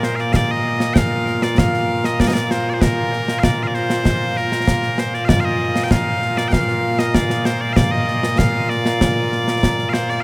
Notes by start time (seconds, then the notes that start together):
Already playing: A#2 A#3 F4
0.03 C5, snare
0.16 F5, snare
0.20 D5
0.33 D5 F5, concert bass drum, snare
0.51 D#5
0.80 snare
0.94 G5, concert bass drum, snare
0.98 F5
1.27 snare
1.42 D5, snare
1.58 F5, concert bass drum, snare
1.74 snare
2.04 D#5, snare
2.20 D5, concert bass drum, snare
2.28 D#5
2.34 D5, snare
2.51 C5, snare
2.70 C5 D5
2.81 A#4, concert bass drum, snare
3.13 snare
3.28 snare
3.39 F5
3.43 D5, concert bass drum, snare
3.63 F5
3.67 D5
3.74 C5, snare
3.90 snare
4.05 concert bass drum, snare
4.37 A#4, snare
4.52 snare
4.67 concert bass drum, snare
4.83 snare
4.98 C5, snare
5.14 D5, snare
5.25 D5 F5, concert bass drum, snare
5.40 F5
5.45 D#5
5.76 snare
5.84 G5
5.91 F5, concert bass drum, snare
6.22 snare
6.37 D5, snare
6.48 G5
6.53 F5, concert bass drum, snare
6.68 snare
6.99 D#5, snare
7.14 D5, concert bass drum, snare
7.30 snare
7.45 C5, snare
7.61 D5
7.73 D5 F5, concert bass drum, snare
7.91 D#5
8.08 snare
8.23 snare
8.38 F5, concert bass drum, snare
8.69 D5, snare
8.86 snare
9.01 concert bass drum, snare
9.32 snare
9.48 snare
9.63 concert bass drum, snare
9.79 snare
9.89 F5
9.93 C5, snare
10.09 D5, snare